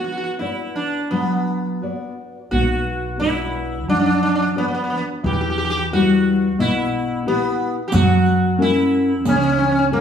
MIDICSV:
0, 0, Header, 1, 5, 480
1, 0, Start_track
1, 0, Key_signature, 2, "minor"
1, 0, Tempo, 700117
1, 1725, Time_signature, 4, 2, 24, 8
1, 1726, Tempo, 684151
1, 3646, Tempo, 667408
1, 7065, End_track
2, 0, Start_track
2, 0, Title_t, "Nylon-string guitar"
2, 0, Program_c, 0, 24
2, 0, Note_on_c, 0, 59, 66
2, 269, Note_off_c, 0, 59, 0
2, 279, Note_on_c, 0, 66, 44
2, 284, Note_on_c, 0, 71, 40
2, 286, Note_on_c, 0, 74, 46
2, 662, Note_off_c, 0, 66, 0
2, 665, Note_off_c, 0, 71, 0
2, 666, Note_off_c, 0, 74, 0
2, 766, Note_on_c, 0, 54, 54
2, 1233, Note_off_c, 0, 54, 0
2, 1248, Note_on_c, 0, 66, 34
2, 1252, Note_on_c, 0, 71, 36
2, 1257, Note_on_c, 0, 74, 42
2, 1631, Note_off_c, 0, 66, 0
2, 1633, Note_off_c, 0, 71, 0
2, 1636, Note_off_c, 0, 74, 0
2, 1728, Note_on_c, 0, 59, 71
2, 2196, Note_off_c, 0, 59, 0
2, 2203, Note_on_c, 0, 66, 51
2, 2209, Note_on_c, 0, 71, 45
2, 2210, Note_on_c, 0, 74, 56
2, 2590, Note_off_c, 0, 66, 0
2, 2591, Note_off_c, 0, 71, 0
2, 2593, Note_off_c, 0, 74, 0
2, 2685, Note_on_c, 0, 54, 64
2, 3151, Note_off_c, 0, 54, 0
2, 3156, Note_on_c, 0, 66, 44
2, 3164, Note_on_c, 0, 71, 42
2, 3165, Note_on_c, 0, 74, 50
2, 3542, Note_off_c, 0, 66, 0
2, 3547, Note_off_c, 0, 71, 0
2, 3547, Note_off_c, 0, 74, 0
2, 3633, Note_on_c, 0, 52, 71
2, 4110, Note_off_c, 0, 52, 0
2, 4130, Note_on_c, 0, 55, 42
2, 4131, Note_on_c, 0, 64, 49
2, 4132, Note_on_c, 0, 71, 59
2, 4517, Note_off_c, 0, 64, 0
2, 4518, Note_off_c, 0, 55, 0
2, 4518, Note_off_c, 0, 71, 0
2, 4606, Note_on_c, 0, 47, 73
2, 5078, Note_off_c, 0, 47, 0
2, 5088, Note_on_c, 0, 64, 47
2, 5094, Note_on_c, 0, 67, 44
2, 5099, Note_on_c, 0, 71, 59
2, 5475, Note_off_c, 0, 64, 0
2, 5478, Note_off_c, 0, 67, 0
2, 5481, Note_off_c, 0, 71, 0
2, 5566, Note_on_c, 0, 54, 83
2, 6033, Note_off_c, 0, 54, 0
2, 6039, Note_on_c, 0, 61, 57
2, 6042, Note_on_c, 0, 66, 46
2, 6045, Note_on_c, 0, 70, 62
2, 6425, Note_off_c, 0, 61, 0
2, 6427, Note_off_c, 0, 66, 0
2, 6428, Note_off_c, 0, 70, 0
2, 6522, Note_on_c, 0, 49, 79
2, 6987, Note_off_c, 0, 49, 0
2, 6997, Note_on_c, 0, 61, 46
2, 7004, Note_on_c, 0, 66, 38
2, 7005, Note_on_c, 0, 70, 49
2, 7065, Note_off_c, 0, 61, 0
2, 7065, Note_off_c, 0, 66, 0
2, 7065, Note_off_c, 0, 70, 0
2, 7065, End_track
3, 0, Start_track
3, 0, Title_t, "Sitar"
3, 0, Program_c, 1, 104
3, 28, Note_on_c, 1, 66, 65
3, 73, Note_off_c, 1, 66, 0
3, 85, Note_on_c, 1, 66, 56
3, 111, Note_off_c, 1, 66, 0
3, 119, Note_on_c, 1, 66, 76
3, 155, Note_off_c, 1, 66, 0
3, 163, Note_on_c, 1, 66, 56
3, 211, Note_off_c, 1, 66, 0
3, 268, Note_on_c, 1, 64, 74
3, 505, Note_off_c, 1, 64, 0
3, 518, Note_on_c, 1, 62, 78
3, 737, Note_off_c, 1, 62, 0
3, 759, Note_on_c, 1, 59, 75
3, 1469, Note_off_c, 1, 59, 0
3, 1722, Note_on_c, 1, 66, 94
3, 2180, Note_off_c, 1, 66, 0
3, 2202, Note_on_c, 1, 64, 86
3, 2657, Note_off_c, 1, 64, 0
3, 2692, Note_on_c, 1, 62, 91
3, 2746, Note_off_c, 1, 62, 0
3, 2763, Note_on_c, 1, 62, 75
3, 2798, Note_off_c, 1, 62, 0
3, 2807, Note_on_c, 1, 62, 81
3, 2857, Note_off_c, 1, 62, 0
3, 2868, Note_on_c, 1, 62, 70
3, 2914, Note_off_c, 1, 62, 0
3, 2925, Note_on_c, 1, 62, 88
3, 2961, Note_off_c, 1, 62, 0
3, 2970, Note_on_c, 1, 62, 59
3, 3006, Note_off_c, 1, 62, 0
3, 3014, Note_on_c, 1, 62, 83
3, 3053, Note_off_c, 1, 62, 0
3, 3061, Note_on_c, 1, 62, 66
3, 3108, Note_off_c, 1, 62, 0
3, 3173, Note_on_c, 1, 59, 89
3, 3221, Note_off_c, 1, 59, 0
3, 3245, Note_on_c, 1, 59, 59
3, 3280, Note_off_c, 1, 59, 0
3, 3289, Note_on_c, 1, 59, 76
3, 3332, Note_off_c, 1, 59, 0
3, 3354, Note_on_c, 1, 59, 65
3, 3388, Note_off_c, 1, 59, 0
3, 3396, Note_on_c, 1, 59, 68
3, 3438, Note_off_c, 1, 59, 0
3, 3450, Note_on_c, 1, 59, 74
3, 3488, Note_off_c, 1, 59, 0
3, 3650, Note_on_c, 1, 67, 77
3, 3693, Note_off_c, 1, 67, 0
3, 3702, Note_on_c, 1, 67, 70
3, 3749, Note_off_c, 1, 67, 0
3, 3758, Note_on_c, 1, 67, 73
3, 3807, Note_off_c, 1, 67, 0
3, 3822, Note_on_c, 1, 67, 74
3, 3867, Note_off_c, 1, 67, 0
3, 3879, Note_on_c, 1, 67, 79
3, 3921, Note_off_c, 1, 67, 0
3, 3929, Note_on_c, 1, 67, 76
3, 3958, Note_off_c, 1, 67, 0
3, 3967, Note_on_c, 1, 67, 95
3, 4010, Note_off_c, 1, 67, 0
3, 4018, Note_on_c, 1, 67, 70
3, 4063, Note_off_c, 1, 67, 0
3, 4134, Note_on_c, 1, 66, 97
3, 4587, Note_off_c, 1, 66, 0
3, 4615, Note_on_c, 1, 64, 104
3, 5069, Note_off_c, 1, 64, 0
3, 5102, Note_on_c, 1, 59, 97
3, 5440, Note_off_c, 1, 59, 0
3, 5533, Note_on_c, 1, 67, 76
3, 5577, Note_off_c, 1, 67, 0
3, 5580, Note_on_c, 1, 66, 101
3, 6064, Note_off_c, 1, 66, 0
3, 6067, Note_on_c, 1, 64, 101
3, 6507, Note_off_c, 1, 64, 0
3, 6546, Note_on_c, 1, 61, 94
3, 6587, Note_off_c, 1, 61, 0
3, 6598, Note_on_c, 1, 61, 75
3, 6640, Note_off_c, 1, 61, 0
3, 6657, Note_on_c, 1, 61, 86
3, 6697, Note_off_c, 1, 61, 0
3, 6714, Note_on_c, 1, 61, 80
3, 6752, Note_off_c, 1, 61, 0
3, 6762, Note_on_c, 1, 61, 86
3, 6801, Note_off_c, 1, 61, 0
3, 6817, Note_on_c, 1, 61, 59
3, 6847, Note_off_c, 1, 61, 0
3, 6856, Note_on_c, 1, 61, 68
3, 6895, Note_off_c, 1, 61, 0
3, 6906, Note_on_c, 1, 61, 74
3, 6945, Note_off_c, 1, 61, 0
3, 7010, Note_on_c, 1, 58, 82
3, 7049, Note_off_c, 1, 58, 0
3, 7065, End_track
4, 0, Start_track
4, 0, Title_t, "Upright bass"
4, 0, Program_c, 2, 32
4, 1726, Note_on_c, 2, 35, 90
4, 2686, Note_off_c, 2, 35, 0
4, 2686, Note_on_c, 2, 42, 100
4, 3308, Note_off_c, 2, 42, 0
4, 3638, Note_on_c, 2, 40, 103
4, 4603, Note_off_c, 2, 40, 0
4, 4603, Note_on_c, 2, 35, 109
4, 5232, Note_off_c, 2, 35, 0
4, 5574, Note_on_c, 2, 42, 116
4, 6531, Note_off_c, 2, 42, 0
4, 6531, Note_on_c, 2, 37, 119
4, 7065, Note_off_c, 2, 37, 0
4, 7065, End_track
5, 0, Start_track
5, 0, Title_t, "Riq"
5, 5564, Note_on_c, 9, 54, 68
5, 5636, Note_off_c, 9, 54, 0
5, 5809, Note_on_c, 9, 54, 21
5, 5881, Note_off_c, 9, 54, 0
5, 6523, Note_on_c, 9, 54, 62
5, 6595, Note_off_c, 9, 54, 0
5, 7065, End_track
0, 0, End_of_file